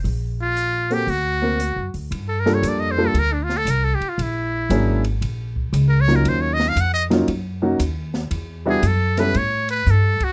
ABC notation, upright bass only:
X:1
M:4/4
L:1/8
Q:"Swing" 1/4=116
K:Gm
V:1 name="Upright bass" clef=bass
B,,,4 D,,2- (3D,, ^F,, D,, | G,,2 F,,2 D,,2 C,, z | B,,,2 _A,,,2 B,,,2 ^C,,2 | E,,2 F,,2 _G,,2 E,,2 |
=E,,2 ^F,,2 A,,2 G,, z |]